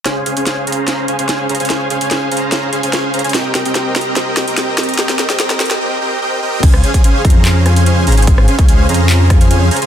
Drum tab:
CC |--------------------------------|--------------------------------|--------------------------------|--------------------------------|
HH |x---x-x-x---xx--x---x-x-x---xxxx|x---x-x-x---xx--x---x-x-x---xxxx|x---x-x-x---xx--x---x-x-x---xxxx|x---x-x-x---xx------------------|
CP |--------------------------------|--------------------------------|--------------------------------|--------------------------------|
SD |o-------o-------o-------o-------|o-------o-------o-------o-------|o---o---o---o---o---o---o---o---|o-o-o-o-o-o-o-o-----------------|
BD |--------------------------------|--------------------------------|--------------------------------|--------------------------------|

CC |x-------------------------------|--------------------------------|
HH |x---x-x-x---xx--x---x-x-x---oxxx|x---x-x-x---xx--x---x-x-x---oxx-|
CP |----------------x---------------|----------------x---------------|
SD |--r-----------------r-----------|--r-----------------r-----------|
BD |o-----o-----o-------------------|o-----o-------------o-----------|